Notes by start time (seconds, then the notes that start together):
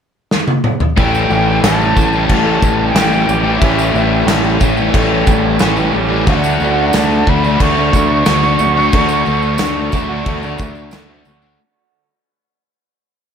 0.31 snare
0.47 high tom
0.64 mid tom
0.80 floor tom
0.97 A1 A2 E3 G3 A3 C#4 G4 G5, kick, crash
1.14 tambourine
1.30 A1 A2 E3 G3 A3 C#4 G4, tambourine
1.62 A1 A2 E3 G3 A3 C#4 G4 A5, snare, tambourine, crash
1.67 A3
1.80 E3 G3 A3 C#4 G4, tambourine
1.97 A1 A2 E3 A3 C#4, muted overdriven electric guitar stroke, kick, tambourine
2.13 E3 A3 C#4 G4, tambourine
2.17 G3
2.27 A1 A3 A5, kick, tambourine, crash
2.45 E3 A3 C#4 G4
2.49 G3
2.61 A1 A2 E3 G3 A3 C#4, kick, tambourine
2.65 G4
2.92 A1 A2 G5
2.96 E3 G3 A3 C#4 G4, snare, tambourine, crash
3.10 E3 A3 C#4 G4, tambourine
3.15 G3
3.27 A1 E3 G3 C#4 G4, muted distorted electric guitar stroke, tambourine
3.43 E3 A3
3.60 A1 A2 E3 G3 A3 C#4 E5, kick, crash
3.64 G4
3.79 tambourine
3.93 A1 A2 E3 G3 A3 C#4 G4, tambourine
4.26 A1 A2 E3 G3 A3 C#4 G4, snare, tambourine, crash
4.43 E3 G3 A3 C#4 G4, tambourine
4.60 A1 A2 E3 A3 C#4, muted overdriven electric guitar stroke, kick, tambourine
4.77 E3 G3 A3 C#4 G4, tambourine
4.94 A1 A3, kick, tambourine, crash
5.10 G3 A3 C#4 G4
5.14 E3
5.26 A1 A2 E3 G3 A3 C#4 G4, kick, tambourine
5.59 A1 A2 E3 G3 A3 C#4 G4, snare, tambourine, crash
5.77 E3 G3 A3 C#4 G4, tambourine
5.93 A1 E3 G3 C#4 G4, muted distorted electric guitar stroke
6.09 E3 A3
6.26 D2 D3 A3 D4 F#4 F#5, kick, crash
6.44 tambourine
6.60 D2 D3 A3 D4, tambourine
6.64 F#4
6.93 D2 D3 A3 D4 F#4 A5, snare, tambourine, crash
7.11 A3 D4 F#4, tambourine
7.26 D2 D3 A3 D4 B5, muted overdriven electric guitar stroke, kick
7.31 D4
7.43 A3 D4 F#4, tambourine
7.60 D2 A3 C#6, kick, tambourine, crash
7.77 A3 D4 F#4
7.93 D2 D3 A3 D4 F#4, kick, tambourine
8.26 D2 D3 A3 D4 F#4, snare, tambourine, crash
8.43 A3 D4 F#4, tambourine
8.59 D2 D3 A3 D4, muted distorted electric guitar stroke, tambourine
8.63 F#4
8.77 A3 D4
8.92 D2 D3 A3 D4, kick, tambourine, crash
8.97 F#4
9.09 tambourine
9.26 D2 D3 A3, tambourine
9.30 D4 F#4
9.42 tambourine
9.58 D2 D3 A3, snare, tambourine, crash
9.63 D4 F#4
9.77 A3 D4 F#4
9.92 D2 D3 A3 D4, muted overdriven electric guitar stroke, kick, tambourine
9.97 D3
10.09 A3 D4 F#4
10.26 D2 A3, kick, crash
10.42 A3 D4 F#4, tambourine
10.58 D2 D3 A3 D4, kick, tambourine
10.63 F#4
10.75 tambourine
10.91 D2 D3 A3 D4, snare, tambourine, crash
10.96 F#4
11.08 A3 D4 F#4
11.25 D2 D3 A3 D4 F#4, muted distorted electric guitar stroke, tambourine
11.42 A3 D4